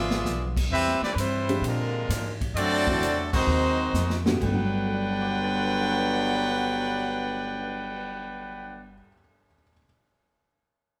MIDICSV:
0, 0, Header, 1, 10, 480
1, 0, Start_track
1, 0, Key_signature, 1, "major"
1, 0, Tempo, 460829
1, 735, Time_signature, 4, 2, 24, 8
1, 11458, End_track
2, 0, Start_track
2, 0, Title_t, "Trumpet section"
2, 0, Program_c, 0, 61
2, 0, Note_on_c, 0, 65, 90
2, 0, Note_on_c, 0, 68, 88
2, 0, Note_on_c, 0, 74, 86
2, 0, Note_on_c, 0, 76, 106
2, 514, Note_off_c, 0, 68, 0
2, 515, Note_off_c, 0, 74, 0
2, 516, Note_off_c, 0, 65, 0
2, 516, Note_off_c, 0, 76, 0
2, 11458, End_track
3, 0, Start_track
3, 0, Title_t, "Trumpet section"
3, 0, Program_c, 1, 61
3, 747, Note_on_c, 1, 71, 109
3, 749, Note_on_c, 1, 60, 99
3, 749, Note_on_c, 1, 67, 94
3, 751, Note_on_c, 1, 76, 106
3, 1039, Note_off_c, 1, 60, 0
3, 1039, Note_off_c, 1, 67, 0
3, 1039, Note_off_c, 1, 71, 0
3, 1041, Note_off_c, 1, 76, 0
3, 1072, Note_on_c, 1, 71, 94
3, 1074, Note_on_c, 1, 60, 87
3, 1075, Note_on_c, 1, 67, 81
3, 1076, Note_on_c, 1, 74, 102
3, 1169, Note_off_c, 1, 60, 0
3, 1169, Note_off_c, 1, 71, 0
3, 1170, Note_off_c, 1, 67, 0
3, 1171, Note_off_c, 1, 74, 0
3, 1183, Note_on_c, 1, 71, 66
3, 1224, Note_off_c, 1, 71, 0
3, 1236, Note_on_c, 1, 55, 77
3, 1240, Note_on_c, 1, 64, 80
3, 1241, Note_on_c, 1, 71, 83
3, 1242, Note_on_c, 1, 72, 86
3, 1706, Note_off_c, 1, 55, 0
3, 1708, Note_off_c, 1, 64, 0
3, 1709, Note_off_c, 1, 71, 0
3, 1709, Note_off_c, 1, 72, 0
3, 1728, Note_on_c, 1, 62, 76
3, 1728, Note_on_c, 1, 70, 84
3, 1729, Note_on_c, 1, 56, 71
3, 1732, Note_on_c, 1, 65, 78
3, 2470, Note_off_c, 1, 56, 0
3, 2470, Note_off_c, 1, 62, 0
3, 2470, Note_off_c, 1, 70, 0
3, 2472, Note_off_c, 1, 65, 0
3, 2656, Note_on_c, 1, 74, 126
3, 2662, Note_on_c, 1, 69, 109
3, 2664, Note_on_c, 1, 60, 112
3, 2668, Note_on_c, 1, 66, 104
3, 3414, Note_off_c, 1, 74, 0
3, 3417, Note_off_c, 1, 69, 0
3, 3418, Note_off_c, 1, 60, 0
3, 3420, Note_off_c, 1, 66, 0
3, 3469, Note_on_c, 1, 56, 81
3, 3469, Note_on_c, 1, 66, 88
3, 3473, Note_on_c, 1, 63, 87
3, 3477, Note_on_c, 1, 72, 95
3, 4381, Note_off_c, 1, 56, 0
3, 4381, Note_off_c, 1, 66, 0
3, 4383, Note_off_c, 1, 63, 0
3, 4385, Note_off_c, 1, 72, 0
3, 4602, Note_on_c, 1, 62, 85
3, 4604, Note_on_c, 1, 71, 87
3, 4604, Note_on_c, 1, 79, 105
3, 4605, Note_on_c, 1, 78, 82
3, 9221, Note_off_c, 1, 62, 0
3, 9222, Note_off_c, 1, 71, 0
3, 9222, Note_off_c, 1, 78, 0
3, 9222, Note_off_c, 1, 79, 0
3, 11458, End_track
4, 0, Start_track
4, 0, Title_t, "Saxophone section"
4, 0, Program_c, 2, 65
4, 0, Note_on_c, 2, 56, 83
4, 0, Note_on_c, 2, 59, 75
4, 0, Note_on_c, 2, 62, 73
4, 0, Note_on_c, 2, 65, 94
4, 585, Note_off_c, 2, 62, 0
4, 586, Note_off_c, 2, 59, 0
4, 592, Note_off_c, 2, 56, 0
4, 592, Note_off_c, 2, 65, 0
4, 11458, End_track
5, 0, Start_track
5, 0, Title_t, "Grand piano"
5, 0, Program_c, 3, 0
5, 1549, Note_on_c, 3, 53, 65
5, 1549, Note_on_c, 3, 60, 63
5, 1550, Note_on_c, 3, 56, 60
5, 1554, Note_on_c, 3, 62, 65
5, 1554, Note_on_c, 3, 67, 83
5, 2151, Note_off_c, 3, 53, 0
5, 2151, Note_off_c, 3, 60, 0
5, 2152, Note_off_c, 3, 56, 0
5, 2154, Note_off_c, 3, 62, 0
5, 2154, Note_off_c, 3, 67, 0
5, 2997, Note_on_c, 3, 62, 65
5, 2998, Note_on_c, 3, 52, 73
5, 2998, Note_on_c, 3, 60, 62
5, 2999, Note_on_c, 3, 57, 58
5, 3000, Note_on_c, 3, 66, 76
5, 3131, Note_off_c, 3, 62, 0
5, 3132, Note_off_c, 3, 52, 0
5, 3132, Note_off_c, 3, 60, 0
5, 3133, Note_off_c, 3, 57, 0
5, 3133, Note_off_c, 3, 66, 0
5, 4436, Note_on_c, 3, 57, 63
5, 4437, Note_on_c, 3, 55, 72
5, 4442, Note_on_c, 3, 62, 60
5, 4444, Note_on_c, 3, 59, 71
5, 4445, Note_on_c, 3, 66, 79
5, 4477, Note_on_c, 3, 43, 63
5, 4541, Note_on_c, 3, 50, 65
5, 4571, Note_off_c, 3, 55, 0
5, 4571, Note_off_c, 3, 57, 0
5, 4574, Note_off_c, 3, 62, 0
5, 4575, Note_off_c, 3, 59, 0
5, 4576, Note_off_c, 3, 66, 0
5, 4606, Note_on_c, 3, 57, 61
5, 4667, Note_on_c, 3, 59, 59
5, 4733, Note_on_c, 3, 54, 71
5, 5074, Note_on_c, 3, 69, 44
5, 5149, Note_on_c, 3, 74, 40
5, 5242, Note_on_c, 3, 78, 38
5, 5331, Note_on_c, 3, 81, 38
5, 5435, Note_on_c, 3, 86, 38
5, 5553, Note_on_c, 3, 90, 34
5, 5672, Note_on_c, 3, 93, 36
5, 9306, Note_off_c, 3, 43, 0
5, 9370, Note_off_c, 3, 50, 0
5, 9435, Note_off_c, 3, 57, 0
5, 9496, Note_off_c, 3, 59, 0
5, 9562, Note_off_c, 3, 54, 0
5, 9861, Note_off_c, 3, 69, 0
5, 9937, Note_off_c, 3, 74, 0
5, 10029, Note_off_c, 3, 78, 0
5, 10074, Note_off_c, 3, 81, 0
5, 10126, Note_off_c, 3, 86, 0
5, 10185, Note_off_c, 3, 90, 0
5, 10245, Note_off_c, 3, 93, 0
5, 11458, End_track
6, 0, Start_track
6, 0, Title_t, "Trombone section"
6, 0, Program_c, 4, 61
6, 0, Note_on_c, 4, 47, 78
6, 0, Note_on_c, 4, 50, 76
6, 0, Note_on_c, 4, 53, 75
6, 578, Note_off_c, 4, 47, 0
6, 582, Note_off_c, 4, 53, 0
6, 583, Note_off_c, 4, 50, 0
6, 734, Note_on_c, 4, 60, 97
6, 736, Note_on_c, 4, 64, 100
6, 738, Note_on_c, 4, 55, 96
6, 1032, Note_off_c, 4, 60, 0
6, 1033, Note_off_c, 4, 64, 0
6, 1034, Note_off_c, 4, 55, 0
6, 1066, Note_on_c, 4, 52, 81
6, 1074, Note_on_c, 4, 55, 77
6, 1078, Note_on_c, 4, 62, 83
6, 1165, Note_off_c, 4, 52, 0
6, 1170, Note_off_c, 4, 55, 0
6, 1171, Note_off_c, 4, 62, 0
6, 1219, Note_on_c, 4, 52, 77
6, 1220, Note_on_c, 4, 55, 82
6, 1226, Note_on_c, 4, 60, 77
6, 1698, Note_off_c, 4, 52, 0
6, 1698, Note_off_c, 4, 55, 0
6, 1701, Note_off_c, 4, 60, 0
6, 1715, Note_on_c, 4, 53, 80
6, 1716, Note_on_c, 4, 50, 74
6, 1722, Note_on_c, 4, 58, 77
6, 2463, Note_off_c, 4, 53, 0
6, 2464, Note_off_c, 4, 50, 0
6, 2467, Note_off_c, 4, 58, 0
6, 2682, Note_on_c, 4, 57, 106
6, 2689, Note_on_c, 4, 54, 107
6, 2691, Note_on_c, 4, 62, 103
6, 3427, Note_off_c, 4, 57, 0
6, 3431, Note_off_c, 4, 54, 0
6, 3432, Note_off_c, 4, 62, 0
6, 3472, Note_on_c, 4, 51, 95
6, 3477, Note_on_c, 4, 54, 95
6, 3478, Note_on_c, 4, 60, 92
6, 4382, Note_off_c, 4, 51, 0
6, 4385, Note_off_c, 4, 54, 0
6, 4386, Note_off_c, 4, 60, 0
6, 4597, Note_on_c, 4, 54, 106
6, 4597, Note_on_c, 4, 59, 103
6, 4598, Note_on_c, 4, 43, 103
6, 4599, Note_on_c, 4, 50, 111
6, 9218, Note_off_c, 4, 54, 0
6, 9218, Note_off_c, 4, 59, 0
6, 9219, Note_off_c, 4, 43, 0
6, 9219, Note_off_c, 4, 50, 0
6, 11458, End_track
7, 0, Start_track
7, 0, Title_t, "Upright bass"
7, 0, Program_c, 5, 32
7, 0, Note_on_c, 5, 32, 90
7, 240, Note_off_c, 5, 32, 0
7, 255, Note_on_c, 5, 35, 82
7, 721, Note_off_c, 5, 35, 0
7, 729, Note_on_c, 5, 40, 83
7, 1029, Note_off_c, 5, 40, 0
7, 1204, Note_on_c, 5, 43, 95
7, 1676, Note_off_c, 5, 43, 0
7, 1682, Note_on_c, 5, 46, 96
7, 2155, Note_off_c, 5, 46, 0
7, 2177, Note_on_c, 5, 44, 90
7, 2638, Note_off_c, 5, 44, 0
7, 2644, Note_on_c, 5, 42, 90
7, 3116, Note_off_c, 5, 42, 0
7, 3136, Note_on_c, 5, 40, 96
7, 3602, Note_off_c, 5, 40, 0
7, 3614, Note_on_c, 5, 39, 92
7, 4081, Note_off_c, 5, 39, 0
7, 4098, Note_on_c, 5, 41, 90
7, 4563, Note_off_c, 5, 41, 0
7, 4587, Note_on_c, 5, 31, 95
7, 9375, Note_off_c, 5, 31, 0
7, 11458, End_track
8, 0, Start_track
8, 0, Title_t, "Cymbal swell"
8, 4920, Note_on_c, 9, 59, 53
8, 8332, Note_off_c, 9, 59, 0
8, 11458, End_track
9, 0, Start_track
9, 0, Title_t, "Muted upright bass strokes"
9, 1053, Note_on_c, 9, 29, 45
9, 1158, Note_off_c, 9, 29, 0
9, 11458, End_track
10, 0, Start_track
10, 0, Title_t, "Drums"
10, 110, Note_on_c, 9, 38, 90
10, 214, Note_off_c, 9, 38, 0
10, 267, Note_on_c, 9, 44, 62
10, 269, Note_on_c, 9, 38, 63
10, 371, Note_off_c, 9, 44, 0
10, 373, Note_off_c, 9, 38, 0
10, 589, Note_on_c, 9, 36, 72
10, 595, Note_on_c, 9, 49, 86
10, 693, Note_off_c, 9, 36, 0
10, 699, Note_off_c, 9, 49, 0
10, 912, Note_on_c, 9, 38, 33
10, 1016, Note_off_c, 9, 38, 0
10, 1071, Note_on_c, 9, 38, 53
10, 1175, Note_off_c, 9, 38, 0
10, 1230, Note_on_c, 9, 44, 51
10, 1230, Note_on_c, 9, 51, 82
10, 1334, Note_off_c, 9, 44, 0
10, 1334, Note_off_c, 9, 51, 0
10, 1551, Note_on_c, 9, 51, 55
10, 1655, Note_off_c, 9, 51, 0
10, 1708, Note_on_c, 9, 51, 72
10, 1812, Note_off_c, 9, 51, 0
10, 2191, Note_on_c, 9, 44, 65
10, 2191, Note_on_c, 9, 51, 87
10, 2193, Note_on_c, 9, 38, 45
10, 2295, Note_off_c, 9, 44, 0
10, 2295, Note_off_c, 9, 51, 0
10, 2297, Note_off_c, 9, 38, 0
10, 2511, Note_on_c, 9, 36, 64
10, 2514, Note_on_c, 9, 51, 52
10, 2615, Note_off_c, 9, 36, 0
10, 2618, Note_off_c, 9, 51, 0
10, 2672, Note_on_c, 9, 51, 78
10, 2777, Note_off_c, 9, 51, 0
10, 2990, Note_on_c, 9, 36, 85
10, 3094, Note_off_c, 9, 36, 0
10, 3153, Note_on_c, 9, 44, 55
10, 3153, Note_on_c, 9, 51, 77
10, 3258, Note_off_c, 9, 44, 0
10, 3258, Note_off_c, 9, 51, 0
10, 3472, Note_on_c, 9, 36, 99
10, 3472, Note_on_c, 9, 49, 86
10, 3576, Note_off_c, 9, 36, 0
10, 3576, Note_off_c, 9, 49, 0
10, 4106, Note_on_c, 9, 44, 74
10, 4108, Note_on_c, 9, 38, 64
10, 4210, Note_off_c, 9, 44, 0
10, 4212, Note_off_c, 9, 38, 0
10, 4269, Note_on_c, 9, 38, 74
10, 4374, Note_off_c, 9, 38, 0
10, 4435, Note_on_c, 9, 38, 99
10, 4539, Note_off_c, 9, 38, 0
10, 4594, Note_on_c, 9, 36, 64
10, 4598, Note_on_c, 9, 49, 60
10, 4698, Note_off_c, 9, 36, 0
10, 4702, Note_off_c, 9, 49, 0
10, 11458, End_track
0, 0, End_of_file